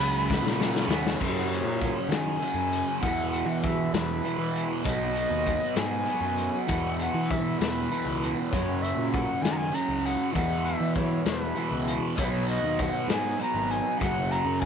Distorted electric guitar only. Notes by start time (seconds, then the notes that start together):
Already playing: F#2 C#3
0.00 F#3
0.29 B3
0.60 C#4
0.89 B3
1.17 F#2 C#3 F#3
2.40 F#2 C#3 F#3
3.01 E2 B2 E3
4.23 E2 B2 E3
4.83 B2 F#3 B3
6.05 B2 F#3 B3
6.67 E2 B2 E3
7.90 E2 B2 E3
8.52 F#2 C#3 F#3
9.72 F#2 C#3 F#3
10.32 E2 B2 E3
11.55 E2 B2 E3
12.16 B2 F#3 B3
13.38 B2 F#3 B3
13.98 F#2 C#3 F#3